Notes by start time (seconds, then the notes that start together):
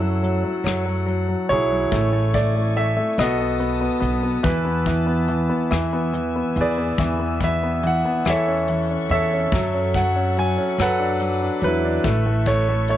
Already playing: F#2 F#3 A3 C#4 E4 A4 F#5 E6
0.02 F#3
0.23 F#3, closed hi-hat
0.44 F#3
0.64 F#2 F#3, cross-stick, closed hi-hat
0.86 F#3
1.06 F#3, closed hi-hat
1.29 F#3
1.49 B1 F#3 E4 G#4 C#5, closed hi-hat
1.71 F#3
1.92 A1 A3 G#5 C#6, kick, closed hi-hat
2.12 A3
2.34 A3 D5, kick, closed hi-hat
2.56 A3
2.76 A3 E5, closed hi-hat
2.97 A3
3.18 B1 B3 B4 D#5 A5 D#6, cross-stick, closed hi-hat
3.22 F#4 A4
3.39 B3
3.60 B3, closed hi-hat
3.81 B3
4.00 B1 B3, closed hi-hat
4.23 B3
4.43 E2 E3 E4 B4 A5 E6, kick, closed hi-hat
4.65 B3
4.86 E3, kick, closed hi-hat
5.07 B3
5.28 E3, closed hi-hat
5.50 B3
5.71 E2 E3 B4 G#5 E6, cross-stick, closed hi-hat
5.93 B3
6.13 E3, closed hi-hat
6.36 B3
6.56 E2 E3, closed hi-hat
6.61 G#4 B4 D5
6.78 B3
6.98 E2 E3, kick, closed hi-hat
7.19 B3
7.40 E3 E5, kick, closed hi-hat
7.63 B3
7.83 E3, closed hi-hat
7.87 F#5
8.05 B3
8.25 E2 E3 A4 F#5 C#6, cross-stick, closed hi-hat
8.30 A4 C#5 E5
8.48 C#4
8.68 E3, closed hi-hat
8.91 C#4
9.09 E2 E3 A4 C#5 E5, closed hi-hat
9.34 C#4
9.51 F#2 F#3 F#5, kick, closed hi-hat
9.74 C#4
9.94 F#3 F#5, kick, closed hi-hat
10.16 C#4
10.37 F#3 G#5, closed hi-hat
10.58 C#4
10.78 F#2 F#3 B4 F#5 D6, cross-stick, closed hi-hat
10.82 A4
10.99 D4
11.20 F#3, closed hi-hat
11.42 D4
11.61 E2 F#3 B4, closed hi-hat
11.67 E4
11.85 D4
12.04 A1 A3 A4 E5 C#6, kick, closed hi-hat
12.26 A3
12.46 A3 C#5, kick, closed hi-hat
12.69 A3
12.88 A3 C#5, closed hi-hat